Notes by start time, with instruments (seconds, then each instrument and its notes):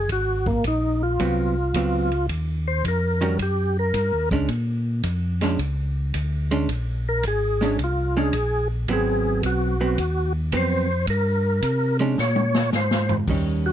0.09 tonewheel organ G#1 F#4, kick, ride
0.46 tonewheel organ A#3, kick
0.64 tonewheel organ A#1 D#4, kick, hi-hat pedal, ride
1.03 tonewheel organ F4
1.20 tonewheel organ C2, hollow-body jazz guitar F#3 B3 C4, kick, ride
1.74 tonewheel organ C#2, hollow-body jazz guitar F#3 B3 C4, kick, hi-hat pedal, ride
2.11 ride
2.29 tonewheel organ D#2, kick, ride
2.68 tonewheel organ C5
2.84 tonewheel organ F2 A#4, kick, hi-hat pedal, ride
3.21 hollow-body jazz guitar D#3 G3 C#4 F#4, ride
3.39 tonewheel organ F#2 G4, kick, ride
3.79 tonewheel organ A#4
3.94 tonewheel organ G2, kick, hi-hat pedal, ride
4.13 tonewheel organ D#2
4.31 tonewheel organ C#2, hollow-body jazz guitar G#3 C#4 D4, kick, ride
4.48 tonewheel organ A#2, kick, ride
5.03 tonewheel organ F2, kick, hi-hat pedal, ride
5.41 hollow-body jazz guitar G#3 C#4 D4, snare, ride
5.59 tonewheel organ C#2, kick, ride
6.14 tonewheel organ D2, kick, hi-hat pedal, ride
6.51 hollow-body jazz guitar G#3 C#4 D4, ride
6.69 tonewheel organ A#1, kick, ride
7.09 tonewheel organ A#4
7.23 tonewheel organ G#1, kick, hi-hat pedal, ride
7.28 tonewheel organ G#4
7.61 hollow-body jazz guitar G#3 C#4 D4, snare
7.78 tonewheel organ C2, kick, ride
7.84 tonewheel organ F4
8.17 hollow-body jazz guitar G#3 C#4 D4, tonewheel organ G#4
8.33 tonewheel organ A#1, kick, hi-hat pedal, ride
8.88 tonewheel organ G#1, hollow-body jazz guitar F#3 B3 C4, kick, ride
8.93 tonewheel organ G#4
9.43 tonewheel organ B1 F#4, kick, hi-hat pedal, ride
9.81 hollow-body jazz guitar F#3 B3 C4
9.98 tonewheel organ D#2, kick, ride
10.52 tonewheel organ F2, hollow-body jazz guitar F#3 B3 C4, kick, hi-hat pedal, ride
10.57 tonewheel organ C5
11.07 tonewheel organ G2 A#4, kick, ride
11.62 tonewheel organ C3, kick, hi-hat pedal, ride
11.99 hollow-body jazz guitar G#3 C#4 D4, ride
12.18 tonewheel organ A#2 C#5, snare
12.36 high tom
12.54 snare
12.72 tonewheel organ G#2 C5, snare, hi-hat pedal
12.91 snare
13.09 floor tom
13.28 tonewheel organ D#2, hollow-body jazz guitar D#3 G3 C#4, kick, crash
13.66 tonewheel organ F#4